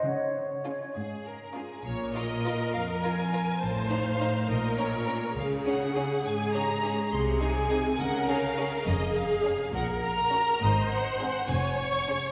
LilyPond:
<<
  \new Staff \with { instrumentName = "Violin section" } { \time 6/8 \key des \major \tempo 4. = 68 r4 aes'8 aes'8 bes'8 aes'8 | \key bes \minor des''8 ees''4 f''8 aes''4 | a''8 f''4 ees''8 des''4 | f''8 ges''4 aes''8 bes''4 |
c'''8 aes''4 ges''8 f''4 | \key des \major ees''8 f''4 ges''8 bes''4 | ees''8 ges''4 aes''8 des'''4 | }
  \new Staff \with { instrumentName = "Flute section" } { \time 6/8 \key des \major des''4. r4. | \key bes \minor r2. | r2. | r2. |
r2. | \key des \major r2. | r2. | }
  \new Staff \with { instrumentName = "Viola section" } { \time 6/8 \key des \major r4 des'8 r4 des'8 | \key bes \minor bes'2. | c''4. bes'4. | aes'2. |
aes'4. bes'4. | \key des \major aes'4. bes'4. | c''4. des''4. | }
  \new Staff \with { instrumentName = "Violin section" } { \time 6/8 \key des \major r4 f'8 r4 f'8 | \key bes \minor r8 <f' bes'>8 <f' bes'>8 r8 <f' bes'>8 <f' bes'>8 | r8 <ees' c''>8 <ees' c''>8 r8 <des' bes'>8 <des' bes'>8 | r8 <des' aes'>8 <des' aes'>8 r8 <des' aes'>8 <des' aes'>8 |
r8 <ees' aes'>8 <ees' aes'>8 r8 <des' aes'>8 <des' aes'>8 | \key des \major r4 <des' aes'>8 r4 <des' ges'>8 | r4 <c' aes'>8 r4 <des' aes'>8 | }
  \new Staff \with { instrumentName = "Cello section" } { \clef bass \time 6/8 \key des \major des4. aes,4. | \key bes \minor bes,4. f,4. | a,4. bes,4. | des4. aes,4. |
c4. des4. | \key des \major f,4. bes,4. | aes,4. f,4. | }
  \new Staff \with { instrumentName = "Double bass section" } { \clef bass \time 6/8 \key des \major r2. | \key bes \minor bes,,4 r2 | a,,4 r8 bes,,4 r8 | des,4 r2 |
c,4 r8 des,4 r8 | \key des \major f,,4 r8 bes,,4 r8 | aes,,4 r8 f,,4 r8 | }
>>